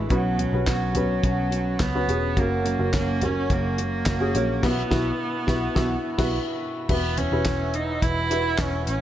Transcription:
Already playing: cello G#3, steel-string acoustic guitar E4, felt piano E4 F#4 A4 B4
0.09 picked electric bass B1, steel-string acoustic guitar B2 F#3 B3 C#4 F#4, felt piano B2 C#4 F#4 B4, cello F#3, kick, closed hi-hat
0.38 steel-string acoustic guitar B3 C#4 F#4, closed hi-hat, floor tom
0.53 picked electric bass B1, felt piano C#4 F#4 B4
0.66 picked electric bass B1, steel-string acoustic guitar F#3 B3 C#4 F#4, cello F#3, kick, snare, clap, closed hi-hat
0.94 steel-string acoustic guitar B3 C#4 F#4, felt piano C#4 F#4 B4, closed hi-hat, floor tom
1.23 picked electric bass B1, steel-string acoustic guitar B2 F#3 B3 C#4 F#4, kick, closed hi-hat
1.51 steel-string acoustic guitar B3 C#4 F#4, closed hi-hat
1.79 picked electric bass C#2, steel-string acoustic guitar F#3 B3 C#4 F#4, cello B3, kick, snare, clap, closed hi-hat
1.95 felt piano C#4 F#4 B4
2.08 picked electric bass E1, steel-string acoustic guitar B3 C#4 F#4, felt piano C#4 F#4 G#4, closed hi-hat
2.36 picked electric bass F#1, steel-string acoustic guitar F#2 C#3 F#3 A#3 C#4 F#4, cello A#3, felt piano C#4 F#4 A#4, kick, closed hi-hat
2.64 steel-string acoustic guitar F#3 A#3 C#4 F#4, closed hi-hat
2.79 picked electric bass F#1, felt piano C#4 F#4 A#4
2.93 picked electric bass F#1, steel-string acoustic guitar F#3 A#3 C#4 F#4, cello A#3, kick, snare, clap, closed hi-hat
3.22 steel-string acoustic guitar F#3 A#3 C#4 F#4, felt piano C#4 F#4 A#4, cello C#4, closed hi-hat, floor tom
3.50 picked electric bass F#1, steel-string acoustic guitar F#2 C#3 F#3 A#3 C#4 F#4, cello A#3, kick, closed hi-hat
3.78 steel-string acoustic guitar F#3 A#3 C#4 F#4, closed hi-hat
4.06 picked electric bass F#1, steel-string acoustic guitar F#3 A#3 C#4 F#4, kick, snare, clap, closed hi-hat
4.20 felt piano C#4 F#4 G#4
4.34 picked electric bass A#1, steel-string acoustic guitar F#3 A#3 C#4 F#4, felt piano C#4 F#4 C#5, closed hi-hat
4.63 picked electric bass B1, steel-string acoustic guitar B2 E3 B3 E4 F#4, felt piano B2 E4 F#4 B4, cello B3, kick, snare, crash
4.90 picked electric bass B1, steel-string acoustic guitar B3 E4 F#4, felt piano E4 F#4, kick, snare
5.47 picked electric bass B1, steel-string acoustic guitar B3 E4 F#4, felt piano E4 F#4, kick, snare
5.75 picked electric bass B1, steel-string acoustic guitar B2 E3 B3 E4 F#4, felt piano E4 F#4, kick, snare
6.18 picked electric bass B1, steel-string acoustic guitar B3 E4 F#4, felt piano E4 F#4 B4, kick, snare, crash
6.89 picked electric bass E1, felt piano E3 E4 F#4 B4, cello B3, analog synth pad B4 E5 F#5 E6, kick, crash
7.18 cello C#4, closed hi-hat, floor tom
7.32 picked electric bass E1, felt piano E4 F#4 B4
7.45 picked electric bass E1, kick, snare, clap, closed hi-hat
7.74 cello D#4, closed hi-hat
8.02 picked electric bass E1, cello E4, kick, closed hi-hat
8.30 felt piano E4 F#4 B4, closed hi-hat
8.58 picked electric bass E1, cello C#4, kick, snare, clap, closed hi-hat
8.87 picked electric bass A1, cello C#4, closed hi-hat

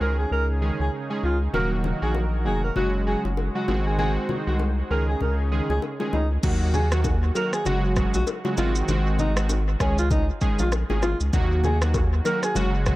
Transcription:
0.00 sub bass C#2, analog synth pad C#3 C#4 D#4 G#4, synth keys D#3 G#3 C#4 G#4, alto saxophone A#4
0.19 alto saxophone G#4
0.31 sub bass C#2, alto saxophone A#4
0.61 synth keys D#3 G#3 C#4 G#4
0.79 sub bass C#2, alto saxophone G#4
1.10 synth keys D#3 G#3 C#4 G#4
1.23 sub bass C#2, alto saxophone F4
1.53 sub bass D#1, synth keys D#3 F#3 A#3 F#4, analog synth pad D#3 F#4 A#4, alto saxophone A#4, low conga
1.84 low bongo, low conga
2.02 sub bass A#1, synth keys D#3 F#3 A#3 F#4, alto saxophone G#4
2.15 high bongo
2.45 sub bass F1, synth keys D#3 F#3 A#3 F#4, alto saxophone G#4
2.64 alto saxophone A#4
2.76 sub bass F#1, synth keys C#3 F#3 G#3 F#4, analog synth pad G#3 C#4, alto saxophone F#4, low conga
3.06 synth keys C#3 F#3 G#3 F#4, alto saxophone G#4
3.24 sub bass F#1, low bongo
3.37 high bongo
3.55 synth keys C#3 F#3 G#3 F#4, alto saxophone F#4
3.68 sub bass G#1, synth keys D#3 G#3 C4 F#4, analog synth pad D#4 C5, low bongo
3.86 alto saxophone G#4
3.98 synth keys D#3 G#3 C4 F#4, alto saxophone G#4, low conga
4.29 low bongo, low conga
4.47 sub bass C2, synth keys D#3 G#3 C4 F#4, alto saxophone F#4
4.59 high bongo
4.90 sub bass C#2, analog synth pad C#3 C#4 D#4 G#4, synth keys D#3 G#3 C#4 G#4, alto saxophone A#4
5.09 alto saxophone G#4
5.21 sub bass C#2, alto saxophone A#4, low conga
5.51 synth keys D#3 G#3 C#4 G#4
5.69 sub bass C#2, alto saxophone G#4, low bongo
5.82 high bongo
6.00 synth keys D#3 G#3 C#4 G#4, low bongo
6.13 sub bass C#2, alto saxophone D#4, low bongo
6.43 sub bass D#2, synth keys D#3 F#3 A#3 F#4, kick, crash, low conga, shaker
6.74 alto saxophone G#4, low conga, shaker
6.92 synth keys D#3 F#3 A#3 F#4, cross-stick, shaker
7.04 kick, high bongo, shaker
7.35 synth keys D#3 F#3 A#3 F#4, alto saxophone A#4, high bongo, shaker
7.53 alto saxophone G#4, cross-stick, shaker
7.65 sub bass F#1, synth keys C#3 F#3 G#3 F#4, alto saxophone F#4, low conga, shaker
7.96 synth keys C#3 F#3 G#3 F#4, kick, cross-stick, shaker
8.14 sub bass A#1, alto saxophone F#4, low bongo, shaker
8.27 high bongo, shaker
8.45 synth keys C#3 F#3 G#3 F#4, low bongo
8.57 sub bass G#1, synth keys D#3 G#3 C4 F#4, alto saxophone F4, low bongo, shaker
8.75 shaker
8.88 sub bass G#1, synth keys D#3 G#3 C4 F#4, low conga, shaker
9.19 alto saxophone D#4, low conga, shaker
9.36 synth keys D#3 G#3 C4 F#4, cross-stick, shaker
9.49 high bongo, shaker
9.80 sub bass C#2, synth keys D#3 G#3 C#4 G#4, alto saxophone C#4, kick, cross-stick, high bongo, shaker
9.98 alto saxophone F4, shaker
10.11 alto saxophone D#4, kick, low conga, shaker
10.41 synth keys D#3 G#3 C#4 G#4, kick, shaker
10.59 sub bass A#1, alto saxophone F4, low bongo, shaker
10.72 cross-stick, high bongo, shaker
10.90 sub bass G#1, synth keys D#3 G#3 C#4 G#4, low bongo
11.03 alto saxophone F4, cross-stick, low bongo, shaker
11.20 sub bass C#2, shaker
11.33 sub bass D#2, synth keys D#3 F#3 A#3 F#4, kick, low conga, shaker
11.64 alto saxophone G#4, low conga, shaker
11.81 synth keys D#3 F#3 A#3 F#4, cross-stick, shaker
11.94 kick, high bongo, shaker
12.25 synth keys D#3 F#3 A#3 F#4, alto saxophone A#4, high bongo, shaker
12.43 alto saxophone G#4, cross-stick, shaker
12.55 sub bass F#1, synth keys C#3 F#3 G#3 F#4, alto saxophone F#4, low conga, shaker
12.86 synth keys C#3 F#3 G#3 F#4, kick, cross-stick, shaker

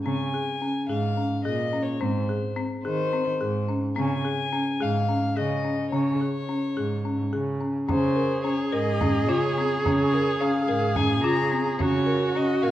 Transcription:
0.05 cello C#3, marimba C4, violin G#5
0.34 marimba G#4
0.62 marimba C#4
0.89 cello G#2, marimba G#4, violin F5
1.17 marimba C#4
1.45 cello A#2, marimba G#4, violin D#5
1.73 marimba C#4
1.83 violin C#5
2.00 cello G#2, marimba C4, violin C5
2.29 marimba G#4
2.56 marimba C4
2.84 cello D#3, marimba G#4, violin C5
3.13 marimba C4
3.41 cello G#2, marimba G#4
3.69 marimba C#4
3.96 cello C#3, marimba C4, violin G#5
4.25 marimba G#4
4.53 marimba C#4
4.80 cello G#2, marimba G#4, violin F5
5.08 marimba C#4
5.37 cello C#3, marimba G#4, violin D#5
5.65 marimba C#4
5.92 cello C#3, marimba C#4, violin C#5
6.21 marimba G#4
6.49 marimba C#4
6.77 cello G#2, marimba G#4
7.05 marimba C#4
7.33 cello C#3, marimba G#4
7.60 marimba C#4
7.88 cello C#3, marimba C#4, viola G#4, violin C5, frame drum
8.16 marimba A#4
8.44 marimba C#4, violin C#5
8.72 cello G#2, marimba A#4, violin D#5
9.01 marimba C#4, frame drum
9.28 cello C#3, marimba F4, violin C#5, frame drum
9.58 marimba C4
9.85 cello C#3, marimba C#4, violin C#5, frame drum
10.14 marimba A#4
10.41 marimba C#4, violin F5
10.69 cello G#2, marimba A#4
10.96 marimba C#4, violin G#5, frame drum
11.24 cello C#3, marimba F4, violin A#5, frame drum
11.52 marimba C4
11.79 cello C#3, marimba C#4, viola F#4, violin C#5, frame drum
12.06 marimba A#4
12.35 marimba C#4, violin D#5
12.63 cello A#2, marimba A#4, violin F5

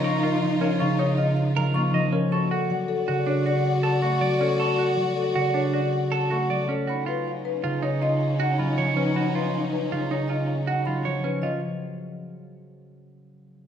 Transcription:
Already playing: harp C#3 F3 A#3, violin section D#4 F4, french horn D#4
0.04 clean electric guitar A#4, marimba C#6
0.23 clean electric guitar F4, marimba A#4
0.42 harp F3, marimba F5
0.61 clean electric guitar C#4, marimba A#4
0.79 harp C#3, clean electric guitar F4, marimba C#6
0.99 clean electric guitar D#4, marimba C#5
1.17 clean electric guitar F4, marimba D#5
1.37 marimba F5
1.56 harp F3, clean electric guitar A#4, marimba A#5
1.74 harp A#3, clean electric guitar F4, marimba C#6
1.94 harp F3, marimba D#5, clean electric guitar D#5
2.12 clean electric guitar C#4, marimba A#4
2.32 french horn F#4, violin section F#4 D5, clean electric guitar A4, marimba C#6
2.51 clean electric guitar F#4, marimba A4
2.70 harp F#3, marimba F#5
2.88 marimba A4
3.08 harp C#3, clean electric guitar F#4
3.27 clean electric guitar D4, marimba C#5
3.46 clean electric guitar F#4, marimba D5
3.65 marimba F#5
3.83 clean electric guitar A4, marimba A5
4.02 harp A3, clean electric guitar F#4, marimba C#6
4.21 harp F#3, clean electric guitar D5, marimba D5
4.41 clean electric guitar C#4, marimba A4
4.60 clean electric guitar A4, marimba C#6
4.79 clean electric guitar F#4, marimba A4
4.96 harp F#3, marimba F#5
5.17 marimba A4
5.35 harp C#3, clean electric guitar F#4
5.54 clean electric guitar D4, marimba C#5
5.73 clean electric guitar F#4, marimba D5
5.92 marimba F#5
6.12 clean electric guitar A4, marimba A5
6.30 harp A3, clean electric guitar F#4, marimba C#6
6.50 harp F#3, clean electric guitar D5, marimba D5
6.69 clean electric guitar C#4, marimba A4
6.87 violin section C#4 D#4, french horn D#4, clean electric guitar F#4, marimba B5
7.06 clean electric guitar F4, marimba B4
7.28 marimba F5
7.45 marimba B4
7.63 harp C#3, clean electric guitar F4
7.83 clean electric guitar D#4, marimba C#5
8.02 clean electric guitar F4, marimba D#5
8.21 marimba F5
8.39 clean electric guitar F#4, marimba F#5
8.58 harp F#3, clean electric guitar F4, marimba B5
8.78 harp F3, clean electric guitar C#5
8.96 clean electric guitar C#4, marimba B4
9.14 clean electric guitar F#4, marimba B5
9.35 clean electric guitar F4, marimba B4
9.54 marimba F5
9.72 marimba B4
9.92 harp C#3, clean electric guitar F4
10.10 clean electric guitar D#4, marimba C#5
10.28 clean electric guitar F4, marimba D#5
10.48 marimba F5
10.67 clean electric guitar F#4, marimba F#5
10.85 harp F#3, clean electric guitar F4, marimba B5
11.05 harp F3, clean electric guitar C#5
11.24 clean electric guitar C#4, marimba B4
11.42 harp F3, clean electric guitar F4, marimba D#5

